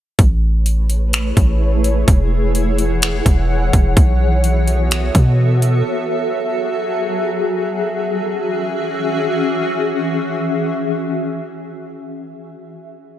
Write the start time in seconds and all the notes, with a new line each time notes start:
0.19 A1 A3 E4 G#4 B4 C#5, kick, closed hi-hat
0.66 closed hi-hat
0.90 closed hi-hat
1.13 finger snap, closed hi-hat
1.37 A1, kick, closed hi-hat
1.84 closed hi-hat
2.08 E1 E3 C#5 F#5, kick, closed hi-hat
2.55 closed hi-hat
2.78 closed hi-hat
3.02 finger snap, closed hi-hat
3.26 E1, kick, closed hi-hat
3.73 E1, kick, closed hi-hat
3.97 B1 B3 F#4 A4 E5, kick, closed hi-hat
4.44 closed hi-hat
4.67 closed hi-hat
4.91 finger snap, closed hi-hat
5.15 B2, kick, closed hi-hat
5.62 closed hi-hat
5.86 F#3 F#4 G#4
7.75 E3 C#4 F#4 G#4 E5